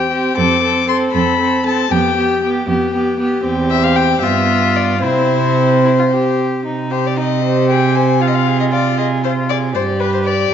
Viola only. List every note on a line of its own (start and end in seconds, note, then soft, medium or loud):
0.00 0.11 C4 soft
0.12 0.36 C4 soft
0.37 0.62 C4 soft
0.62 0.88 C4 soft
0.88 1.13 C4 soft
1.14 1.39 C4 soft
1.40 1.65 C4 soft
1.66 1.91 C4 soft
1.92 2.16 B3 soft
2.18 2.42 B3 soft
2.44 2.68 B3 soft
2.69 2.93 B3 soft
2.94 3.19 B3 soft
3.19 3.44 B3 medium
3.45 4.19 C4 soft
4.23 5.02 B3 soft
5.04 6.42 C4 medium
7.43 8.22 G4 soft
8.21 9.75 F4 soft
9.76 10.54 G4 soft